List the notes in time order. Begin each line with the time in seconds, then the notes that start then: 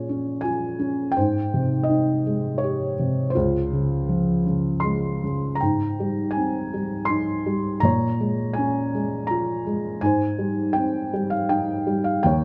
Already playing: A#2 C#4 F4 G#4 C#5
0.09 C#4
0.41 F4 G#5
0.79 C#4
1.12 G5
1.17 G#2 C5
1.54 C3
1.83 D#5
1.89 D#4
2.26 G#3
2.58 C#5
2.64 G4
2.99 C3
3.30 C5
3.35 C#2 F4
3.73 C#3
4.09 F3
4.46 C#3
4.80 G#3 C6
5.24 C#3
5.55 A#5
5.61 G#2 G5
6.00 G3
6.31 G#5
6.37 C4
6.74 G3
7.05 C6
7.09 D#4
7.46 G3
7.80 A#2 A#5
7.85 C#5
8.20 G#3
8.53 G#5
8.58 C#4
8.95 G#3
9.27 F4 A#5
9.67 G#3
10.01 G#2 G#5
10.06 C5
10.39 G3
10.73 C4 G5
11.14 G3
11.30 F5
11.49 D#4 G5
11.87 G3
12.04 F5
12.23 D#2 C#5 G5